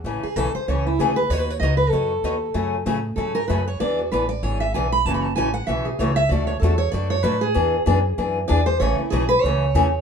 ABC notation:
X:1
M:4/4
L:1/8
Q:"Swing" 1/4=192
K:A
V:1 name="Steel-string acoustic guitar"
z G A =c ^c E G B | (3c B c ^d B A4- | A2 z2 A _B =B c | d F B d c e g b |
(3a b a g f e G c e | d c A c d c B G- | G4 z2 d =c | c E G B c4 |]
V:2 name="Steel-string acoustic guitar"
[C,E,A,CG] z [C,E,A,CG] z [C,E,A,CG] z [C,E,A,CG] z | [B,^DFc] z [B,DFc] z [B,DFc] z [B,DFc] z | [C,F,A,CG] z [C,F,A,CG] z [C,F,A,CG] z [C,F,A,CG] z | [E,B,DG] z [E,B,DG] z [E,B,DG] z [E,B,DG] z |
[C,E,A,CF] z [C,E,A,CF] z [C,E,A,CF] z [C,E,A,CF] z | [B,,F,A,DF] z [B,,F,A,DF] z [B,,F,A,DF] z [B,,F,A,DF] z | [E,B,DG] z [E,B,DG] z [E,B,DG] z [E,B,DG] z | [C,E,A,CG] z [C,E,A,CG] z [C,E,A,CG] z [C,E,A,CG] z |]
V:3 name="Upright bass" clef=bass
A,,, z B,,, z C,,2 D,,2 | ^D,,2 C,,2 F,,2 D,,2 | F,,2 A,,2 G,,2 F,,2 | E,,2 A,,,2 G,,,2 B,,,2 |
F,,,2 A,,,2 B,,,2 C,,2 | D,,2 E,,2 F,,2 A,,2 | E,,2 F,,2 F,,2 E,,2 | A,,, z B,,,2 C,,2 E,,2 |]